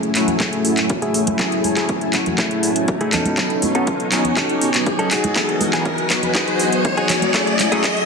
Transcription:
Already playing: fingered electric bass F#2, analog polysynth F#3 A3 C#4 E4 G#4, string machine A3 E4 G#5, riser
0.03 closed hi-hat
0.15 fingered electric bass F#1, analog polysynth F#3 A3 C#4 E4 F#4, clap, open hi-hat
0.28 fingered electric bass F#1, closed hi-hat, tambourine, low conga
0.40 fingered electric bass F#2, clean electric guitar A3 E4 G#4, kick, clap, closed hi-hat, tambourine
0.53 closed hi-hat
0.64 fingered electric bass F#1, open hi-hat, tambourine
0.77 fingered electric bass F#1, clap, closed hi-hat
0.90 fingered electric bass F#2, kick, closed hi-hat
1.02 clean electric guitar A3 E4 G#4, closed hi-hat
1.14 fingered electric bass F#1, open hi-hat, tambourine
1.27 fingered electric bass F#1, closed hi-hat, tambourine, high conga
1.39 fingered electric bass F#2, analog polysynth F#3 A3 C#4 E4 G#4, clean electric guitar A3 E4 G#4, kick, clap, closed hi-hat, tambourine
1.52 closed hi-hat, tambourine
1.64 fingered electric bass F#1, open hi-hat, tambourine, high conga
1.77 fingered electric bass F#1, analog polysynth F#3 A3 C#4 E4 G#4, clean electric guitar A3 E4 G#4, clap, closed hi-hat
1.89 fingered electric bass F#2, kick, closed hi-hat
2.01 closed hi-hat
2.13 fingered electric bass F#1, analog polysynth F#3 A3 C#4 E4 F#4, kick, clap, open hi-hat
2.26 fingered electric bass F#1, closed hi-hat, tambourine, low conga
2.38 fingered electric bass F#2, clean electric guitar A3 E4 G#4, kick, clap, closed hi-hat
2.51 closed hi-hat
2.63 fingered electric bass F#1, open hi-hat, tambourine
2.76 fingered electric bass F#1, closed hi-hat, tambourine
2.88 fingered electric bass F#2, kick, closed hi-hat, tambourine
3.01 clean electric guitar A3 E4 G#4, closed hi-hat, tambourine
3.13 fingered electric bass B2, clean electric guitar C#4 D#4 A4, string machine D#4 C#5, clap, open hi-hat, tambourine, low conga
3.25 fingered electric bass B2, closed hi-hat, tambourine, high conga
3.37 fingered electric bass B1, analog polysynth F#3 B3 C#4 D#4 A4, kick, clap, closed hi-hat
3.50 closed hi-hat, tambourine
3.62 fingered electric bass B2, open hi-hat, tambourine, high conga
3.75 fingered electric bass B2, analog polysynth F#3 B3 C#4 D#4 A4, clean electric guitar C#4 D#4 A4, closed hi-hat, tambourine
3.87 fingered electric bass B1, kick, closed hi-hat, tambourine
4.00 closed hi-hat
4.11 fingered electric bass B2, analog polysynth F#3 B3 C#4 D#4 G#5, clap, open hi-hat
4.24 fingered electric bass B2, closed hi-hat, tambourine, low conga
4.37 fingered electric bass B1, clean electric guitar C#4 D#4 A4, kick, clap, closed hi-hat, tambourine
4.49 closed hi-hat
4.61 fingered electric bass B2, open hi-hat, tambourine
4.74 fingered electric bass B2, clap, closed hi-hat
4.86 kick, closed hi-hat, tambourine
4.99 clean electric guitar C#4 D#4 A4, closed hi-hat, tambourine
5.11 fingered electric bass E1, clean electric guitar D#4 F#4 G#4, string machine F#4 D#5 G#5, clap, open hi-hat, tambourine
5.24 fingered electric bass E1, closed hi-hat, tambourine, high conga
5.36 fingered electric bass E2, analog polysynth E3 F#3 B3 D#4 G#4, kick, clap, closed hi-hat, tambourine
5.49 closed hi-hat, tambourine
5.60 fingered electric bass E1, open hi-hat, tambourine, high conga
5.73 fingered electric bass E1, analog polysynth E3 F#3 B3 D#4 G#4, clean electric guitar D#4 F#4 G#4, clap, closed hi-hat
5.85 fingered electric bass E2, kick, closed hi-hat, tambourine
5.98 closed hi-hat
6.09 fingered electric bass E1, analog polysynth E3 F#3 B3 D#4 F#4, kick, clap, open hi-hat
6.22 fingered electric bass E1, closed hi-hat, tambourine, low conga
6.35 fingered electric bass E2, clean electric guitar D#4 F#4 G#4, kick, clap, closed hi-hat, tambourine
6.48 closed hi-hat
6.59 fingered electric bass E1, open hi-hat, tambourine
6.72 fingered electric bass E1, closed hi-hat, tambourine
6.85 fingered electric bass E2, kick, closed hi-hat, tambourine
6.97 clean electric guitar D#4 F#4 G#4, closed hi-hat, tambourine
7.09 fingered electric bass E1, clap, open hi-hat, tambourine, low conga
7.22 fingered electric bass E1, closed hi-hat, tambourine, high conga
7.34 fingered electric bass F#2, analog polysynth F#3 A3 C#4 E4 G#4, string machine A3 E4, clean electric guitar A3 E4 G#4, kick, clap, closed hi-hat
7.47 closed hi-hat, tambourine
7.59 clap, open hi-hat, tambourine, high conga
7.72 fingered electric bass F#1, analog polysynth F#3 A3 C#4 E4 G#4, clean electric guitar A3 E4 G#4, closed hi-hat, tambourine
7.84 fingered electric bass F#2, kick, clap, closed hi-hat, tambourine
7.97 closed hi-hat

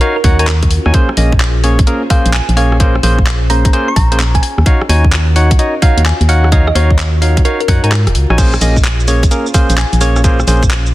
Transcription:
Already playing: string machine C#4 F4 F#4 A#4
0.01 tine electric piano D#4 F#4 C#5 F5, synth pluck A#4, closed hi-hat
0.16 synth pluck A#4
0.24 fm bass D#2, tine electric piano D#4 F#4 C#5 F#5, kick, open hi-hat
0.39 tine electric piano D#4 F#4 C#5 G#5, synth pluck A#4, closed hi-hat
0.47 synth pluck A#4, clap
0.63 kick, cross-stick, closed hi-hat
0.71 open hi-hat
0.86 fm bass D#2, tine electric piano D#4 F#4 C#5 G#5, cross-stick
0.94 tine electric piano A#3 C#4 G#4 C5, string machine G#4 C5, kick, closed hi-hat
1.09 cross-stick
1.17 fm bass A#1, tine electric piano A#3 C#4 G#4 D#5, open hi-hat
1.32 kick
1.40 clap
1.64 tine electric piano A#3 C#4 G#4 C#5, open hi-hat
1.79 kick, closed hi-hat
1.87 tine electric piano A#3 C#4 G#4 A#4, closed hi-hat
2.10 tine electric piano A#3 C#4 G#4 C5, synth pluck F5, kick, cross-stick, open hi-hat
2.26 fm bass A#1, closed hi-hat
2.34 synth pluck G#5, clap
2.49 fm bass A#1, closed hi-hat
2.57 tine electric piano A#3 C#4 G#4 C#5, synth pluck F5, open hi-hat
2.72 cross-stick
2.80 tine electric piano A#3 C#4 G#4 C5, kick, closed hi-hat
2.95 cross-stick
3.03 fm bass A#1, tine electric piano A#3 C#4 G#4 C5, open hi-hat
3.19 kick
3.26 clap
3.50 tine electric piano A#3 C#4 G#4 C5, synth pluck A#5, open hi-hat
3.65 synth pluck A#5, kick, closed hi-hat
3.73 tine electric piano A#3 C#4 G#4 C5, closed hi-hat
3.88 synth pluck C#6
3.96 fm bass A#1, synth pluck A#5, kick, open hi-hat
4.12 tine electric piano A#3 C#4 G#4 C5, closed hi-hat
4.20 clap
4.35 synth pluck G#5, kick, cross-stick, closed hi-hat
4.43 string machine F4 F#4 A#4, synth pluck G#5, open hi-hat
4.58 fm bass D#2, cross-stick
4.66 tine electric piano D#4 F#4 C#5 F5, kick, closed hi-hat
4.81 cross-stick
4.89 fm bass D#2, tine electric piano D#4 F#4 C#5 G#5, open hi-hat
5.04 kick
5.13 clap
5.36 tine electric piano D#4 F#4 C#5 F#5, open hi-hat
5.51 kick, closed hi-hat
5.59 tine electric piano D#4 F#4 C#5 D#5, closed hi-hat
5.82 tine electric piano D#4 F#4 C#5 F5, synth pluck F5, kick, cross-stick, open hi-hat
5.97 fm bass D#2, closed hi-hat
6.05 synth pluck G#5, clap
6.21 fm bass D#2, closed hi-hat
6.29 tine electric piano D#4 F#4 C#5 F#5, synth pluck F5, open hi-hat
6.44 cross-stick
6.52 tine electric piano D#4 F#4 C#5 F5, synth pluck D#5, kick, closed hi-hat
6.67 synth pluck D#5, cross-stick
6.75 fm bass D#2, tine electric piano D#4 F#4 C#5 F5, synth pluck C#5, open hi-hat
6.91 kick
6.99 clap
7.22 tine electric piano D#4 F#4 C#5 F5, open hi-hat
7.37 kick, closed hi-hat
7.45 tine electric piano D#4 F#4 C#5 F5, synth pluck A#4, closed hi-hat
7.60 synth pluck A#4, closed hi-hat
7.68 fm bass F#2, tine electric piano D#4 F#4 C#5 F#5, kick, open hi-hat
7.84 fm bass G#2, tine electric piano D#4 F#4 C#5 G#5, synth pluck A#4, closed hi-hat
7.92 synth pluck A#4, cross-stick, clap
8.07 fm bass D#1, cross-stick, closed hi-hat
8.15 fm bass C#2, open hi-hat
8.30 fm bass A#1, tine electric piano D#4 F#4 C#5 G#5, cross-stick
8.38 tine electric piano A#3 C#4 G#4 C5, string machine C#4 G#4 C5, kick, closed hi-hat, crash, shaker
8.54 cross-stick, shaker
8.61 fm bass A#1, tine electric piano A#3 C#4 G#4 D#5, open hi-hat, shaker
8.77 kick, shaker
8.85 clap, shaker
9.00 shaker
9.08 tine electric piano A#3 C#4 G#4 C#5, open hi-hat, shaker
9.23 kick, closed hi-hat, shaker
9.31 tine electric piano A#3 C#4 G#4 A#4, closed hi-hat, shaker
9.46 shaker
9.54 tine electric piano A#3 C#4 G#4 C5, synth pluck F5, kick, cross-stick, open hi-hat, shaker
9.70 fm bass A#1, closed hi-hat, shaker
9.78 synth pluck G#5, clap, shaker
9.93 fm bass A#1, closed hi-hat, shaker
10.01 tine electric piano A#3 C#4 G#4 C#5, synth pluck F5, open hi-hat, shaker
10.16 cross-stick, shaker
10.24 tine electric piano A#3 C#4 G#4 C5, kick, closed hi-hat, shaker
10.40 cross-stick, shaker
10.47 fm bass A#1, tine electric piano A#3 C#4 G#4 C5, open hi-hat, shaker
10.63 kick, shaker
10.71 clap, shaker
10.86 shaker

